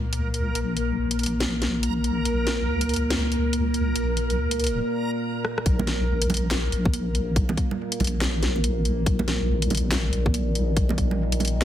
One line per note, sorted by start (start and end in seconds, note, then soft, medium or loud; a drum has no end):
0.00 0.54 C#2 loud
0.00 5.65 A#2 medium
0.00 5.65 A#3 medium
0.00 4.81 A#4 medium
0.13 closed hi-hat medium
0.34 closed hi-hat medium
0.55 0.96 A#1 loud
0.55 closed hi-hat medium
0.77 closed hi-hat medium
0.98 2.24 A#1 loud
1.11 closed hi-hat medium
1.19 closed hi-hat soft
1.23 closed hi-hat medium
1.26 closed hi-hat medium
1.40 snare loud
1.40 closed hi-hat medium
1.62 snare medium
1.62 closed hi-hat medium
1.83 closed hi-hat medium
2.04 closed hi-hat medium
2.25 2.67 A#1 loud
2.25 closed hi-hat medium
2.47 snare medium
2.47 closed hi-hat soft
2.68 3.94 C#2 loud
2.81 closed hi-hat medium
2.89 closed hi-hat soft
2.94 closed hi-hat medium
2.96 closed hi-hat medium
3.10 snare loud
3.10 closed hi-hat medium
3.32 closed hi-hat medium
3.53 closed hi-hat medium
3.74 closed hi-hat medium
3.96 4.37 A#1 loud
3.96 closed hi-hat medium
4.17 closed hi-hat soft
4.30 closed hi-hat soft
4.38 4.81 C#2 loud
4.51 closed hi-hat medium
4.60 closed hi-hat soft
4.64 closed hi-hat medium
4.67 closed hi-hat medium
5.45 cross-stick medium
5.58 cross-stick medium
5.66 6.07 A#1 loud
5.66 11.64 A#2 medium
5.66 9.09 A#3 medium
5.66 kick loud
5.66 closed hi-hat medium
5.79 high conga loud
5.79 low conga medium
5.87 snare medium
5.87 closed hi-hat medium
6.08 6.71 A#1 loud
6.22 closed hi-hat medium
6.30 closed hi-hat medium
6.30 high conga medium
6.30 low conga loud
6.34 closed hi-hat medium
6.37 closed hi-hat medium
6.51 snare loud
6.51 clap medium
6.51 closed hi-hat medium
6.72 7.56 A#1 loud
6.72 closed hi-hat medium
6.85 kick loud
6.85 high conga loud
6.94 closed hi-hat medium
7.15 closed hi-hat medium
7.36 kick loud
7.36 closed hi-hat medium
7.49 high conga loud
7.49 low conga loud
7.57 kick medium
7.57 closed hi-hat medium
7.71 low conga medium
7.92 closed hi-hat medium
8.00 9.05 A#1 loud
8.00 closed hi-hat soft
8.00 high conga medium
8.00 low conga loud
8.04 closed hi-hat medium
8.07 closed hi-hat medium
8.21 snare loud
8.21 clap loud
8.21 closed hi-hat medium
8.43 snare medium
8.43 closed hi-hat medium
8.56 high conga medium
8.64 closed hi-hat medium
8.85 closed hi-hat medium
9.06 9.48 A#1 loud
9.06 11.64 D#3 medium
9.06 kick loud
9.06 closed hi-hat medium
9.19 high conga loud
9.19 low conga medium
9.28 snare medium
9.28 closed hi-hat medium
9.49 10.11 A#1 loud
9.62 closed hi-hat medium
9.70 closed hi-hat soft
9.70 high conga medium
9.70 low conga loud
9.75 closed hi-hat medium
9.77 closed hi-hat medium
9.92 snare loud
9.92 clap medium
9.92 closed hi-hat medium
10.13 10.97 A#1 loud
10.13 closed hi-hat medium
10.26 kick loud
10.26 high conga loud
10.34 closed hi-hat medium
10.55 closed hi-hat medium
10.77 kick loud
10.77 closed hi-hat medium
10.89 high conga loud
10.89 low conga loud
10.98 11.64 A#1 loud
10.98 kick medium
10.98 closed hi-hat medium
11.11 low conga medium
11.32 closed hi-hat medium
11.40 closed hi-hat soft
11.40 high conga medium
11.40 low conga medium
11.45 closed hi-hat medium
11.48 closed hi-hat medium